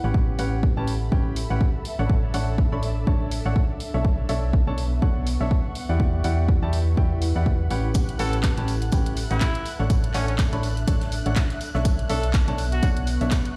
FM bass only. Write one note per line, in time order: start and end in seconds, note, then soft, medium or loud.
0.04 0.37 A1 medium
0.39 0.74 A1 medium
0.77 1.10 A1 loud
1.12 1.47 A1 medium
1.50 1.62 A1 medium
1.99 2.32 A1 loud
2.34 2.69 A1 loud
2.72 3.05 A1 loud
3.07 3.43 A1 medium
3.45 3.57 A1 medium
3.94 4.27 B1 loud
4.29 4.65 B1 medium
4.67 5.00 B1 loud
5.02 5.38 B1 medium
5.40 5.52 B1 medium
5.89 6.22 E2 medium
6.24 6.60 E2 medium
6.62 6.95 E2 loud
6.97 7.33 E2 medium
7.36 7.68 E2 medium
7.71 8.17 A1 medium
8.19 8.55 A1 medium
8.58 8.90 A1 loud
8.92 9.28 A1 medium
9.31 9.42 A1 loud
9.80 10.12 A1 loud
10.14 10.50 A1 loud
10.53 10.86 A1 loud
10.88 11.23 A1 medium
11.26 11.37 A1 medium
11.75 12.07 B1 medium
12.10 12.45 B1 loud
12.48 12.81 B1 loud
12.83 13.18 B1 loud
13.21 13.32 B1 medium